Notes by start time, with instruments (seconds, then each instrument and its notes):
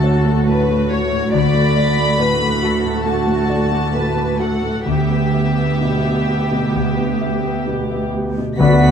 Already playing: cello section D2, grand piano D2 A2 A3 F#4 C#5, harp D3 A3 D4 A4 C#5, viola section A3 F#4, violin section A4 A5
0.04 harp F#4, grand piano C#5
0.26 grand piano A3, harp C#5
0.47 grand piano A2, harp A4, violin section B4
0.69 grand piano A3, harp C#5
0.91 harp F#4, grand piano F#4, violin section C#5
1.12 grand piano A2, harp A3
1.33 cello section D2, grand piano D2, harp D3, viola section A3 F#4, violin section D5 B5
1.54 grand piano A3, harp A3
1.76 harp F#4, grand piano D5
1.97 grand piano A3, harp D5
2.20 grand piano A2, harp A4, violin section B4
2.41 grand piano A3, harp D5
2.62 grand piano F#4, harp F#4, violin section A4
2.84 grand piano A2, harp A3
3.05 grand piano A3, harp D4, violin section F#4 A5
3.27 grand piano A2, harp A3
3.50 harp F#4, grand piano D5
3.71 grand piano A3, harp D5
3.95 grand piano A2, harp A4, violin section B4
4.17 grand piano A3, harp D5
4.40 grand piano F#4, harp F#4, violin section A4 F#5
4.62 grand piano A2, harp A3
4.85 grand piano D2, cello section D2, harp D3, viola section B3 G4, violin section G4 E5
5.10 grand piano B3, harp B3
5.34 harp G4, grand piano E5
5.58 grand piano B3, harp E5
5.81 grand piano B2, harp B4
6.04 grand piano B3, harp E5
6.28 grand piano G4, harp G4
6.51 grand piano B2, harp B3
6.74 grand piano D2, harp D3
6.97 grand piano B3, harp D4
7.21 harp G4, grand piano E5
7.44 grand piano B3, harp E5
7.67 grand piano B2, harp B4
7.91 grand piano B3, harp E5
8.13 harp G4, grand piano G4
8.38 grand piano B2, harp B3
8.57 double bass section D2, cello section D2, grand piano D2, timpani D3, harp D3, french horn section B3, viola section B3 D4, clarinet F#4, violin section F#4 F#5 B6, oboe B4, flute section D5
8.82 harp D4